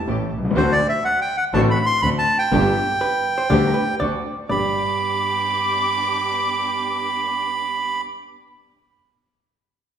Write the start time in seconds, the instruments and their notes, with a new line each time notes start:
0.07 double bass A1, grand piano A1 A2, string section A3 C#4 G4
0.32 double bass C2
0.38 grand piano B1
0.45 grand piano C2
0.51 grand piano C#2
0.56 double bass D2, grand piano D2 D3 A3 C4 F#4, string section C4 D4 F#4, bandoneon C5
0.72 bandoneon D5
0.89 bandoneon E5
1.05 bandoneon F#5
1.21 bandoneon G5
1.37 bandoneon F#5
1.53 double bass A1, grand piano A1 A2 D3 A3 C4 F#4, string section C4 D4 F#4, bandoneon A5
1.71 bandoneon B5
1.86 bandoneon C6
2.02 grand piano D2 D3, double bass D2, string section C4 D4 F#4, bandoneon B5
2.19 bandoneon A5
2.38 bandoneon G5
2.51 grand piano G1 G2 D3 G3 B3 G4, double bass G1, string section B3 D4 G4
3.01 hollow-body jazz guitar B4
3.38 hollow-body jazz guitar C5
3.50 grand piano D2 D3 G3 B3 G4, double bass D2, string section B3 D4 G4, hollow-body jazz guitar D5
3.67 hollow-body jazz guitar A#4
3.74 hollow-body jazz guitar B4
3.99 grand piano D2 D3, double bass D2, string section C4 D4 F#4, hollow-body jazz guitar D5
4.49 double bass G1, grand piano G2 B3 D4 G4, string section B3 D4 G4, hollow-body jazz guitar D5, bandoneon B5, violin section D6